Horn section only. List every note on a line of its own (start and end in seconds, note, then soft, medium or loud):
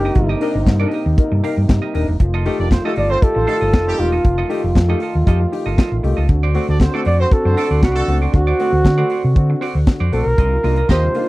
2.59 2.69 D4 medium
2.59 2.69 G4 medium
2.59 2.69 A#4 medium
2.59 2.69 D5 medium
2.71 2.82 C4 medium
2.71 2.82 F4 medium
2.71 2.82 A4 medium
2.71 2.82 C5 medium
2.85 2.92 A3 medium
2.85 2.92 D#4 medium
2.85 2.92 F4 medium
2.85 2.92 A4 medium
3.10 3.17 C4 medium
3.10 3.17 F4 medium
3.10 3.17 A4 medium
3.10 3.17 C5 medium
3.36 3.46 C4 medium
3.36 3.46 F4 medium
3.36 3.46 A4 medium
3.36 3.46 C5 medium
3.48 3.56 A3 medium
3.48 3.56 D#4 medium
3.48 3.56 F4 medium
3.48 3.56 A4 loud
3.87 4.07 G3 loud
3.87 4.07 C4 medium
3.87 4.07 D#4 medium
3.87 4.07 G4 loud
6.69 6.78 D4 medium
6.69 6.78 F#4 medium
6.69 6.78 A4 medium
6.69 6.78 D5 medium
6.80 6.91 C4 medium
6.80 6.91 F#4 medium
6.80 6.91 A4 medium
6.80 6.91 C5 medium
6.94 7.01 A3 medium
6.94 7.01 D4 medium
6.94 7.01 F#4 medium
6.94 7.01 A4 medium
7.20 7.27 C4 medium
7.20 7.27 F#4 medium
7.20 7.27 A4 medium
7.20 7.27 C5 medium
7.45 7.55 C4 medium
7.45 7.55 F#4 medium
7.45 7.55 A4 medium
7.45 7.55 C5 medium
7.57 7.65 A3 medium
7.57 7.65 D4 medium
7.57 7.65 F#4 medium
7.57 7.65 A4 medium
7.96 8.16 A3 loud
7.96 8.17 D4 medium
7.96 8.17 F#4 medium
7.96 8.16 A4 loud